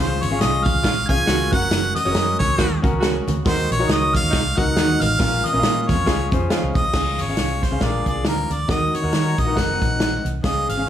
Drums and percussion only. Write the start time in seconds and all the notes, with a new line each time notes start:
0.22 closed hi-hat, muted conga, high conga
0.40 snare, closed hi-hat, muted conga
0.66 kick, closed hi-hat, high conga, low conga
0.84 kick, snare, closed hi-hat, low conga
1.09 kick, closed hi-hat, high conga
1.18 high conga
1.27 snare, closed hi-hat
1.52 kick, closed hi-hat, muted conga, high conga, low conga
1.71 snare, closed hi-hat
1.95 closed hi-hat, muted conga, high conga
2.15 snare, closed hi-hat
2.40 kick, snare, closed hi-hat, high conga, low conga
2.58 kick, snare, closed hi-hat, muted conga, low conga
2.84 kick, closed hi-hat, high conga
2.93 high conga
3.02 snare, closed hi-hat, muted conga
3.28 closed hi-hat, muted conga, high conga, low conga
3.45 kick, snare, closed hi-hat
3.71 closed hi-hat, muted conga, high conga
3.89 snare, closed hi-hat
4.14 kick, snare, closed hi-hat, high conga, low conga
4.33 kick, snare, closed hi-hat, low conga
4.58 kick, closed hi-hat, muted conga, high conga
4.68 high conga
4.77 snare, closed hi-hat
5.01 closed hi-hat, muted conga, high conga, low conga
5.20 kick, snare, closed hi-hat
5.45 closed hi-hat, high conga
5.63 snare, closed hi-hat
5.89 kick, snare, closed hi-hat, high conga, low conga
6.06 kick, snare, closed hi-hat, muted conga, low conga
6.32 kick, closed hi-hat, muted conga, high conga
6.41 high conga
6.50 snare, closed hi-hat
6.64 high conga
6.75 kick, closed hi-hat, muted conga, high conga, low conga
6.93 kick, snare, crash, muted conga
7.18 closed hi-hat, muted conga, high conga
7.37 snare, closed hi-hat
7.62 kick, snare, closed hi-hat, muted conga, high conga, low conga
7.80 kick, snare, closed hi-hat, muted conga, low conga
8.06 kick, closed hi-hat, muted conga, high conga
8.16 high conga
8.24 snare, closed hi-hat, muted conga
8.38 high conga
8.50 closed hi-hat, high conga
8.69 kick, snare, closed hi-hat
8.94 closed hi-hat, muted conga, high conga
9.13 snare, closed hi-hat
9.38 kick, closed hi-hat, muted conga, high conga, low conga
9.56 kick, snare, closed hi-hat, muted conga, low conga
9.82 kick, closed hi-hat, muted conga, high conga
9.91 high conga
9.99 snare, closed hi-hat, muted conga
10.13 high conga
10.25 closed hi-hat, high conga
10.44 kick, snare, closed hi-hat, muted conga
10.69 closed hi-hat, muted conga, high conga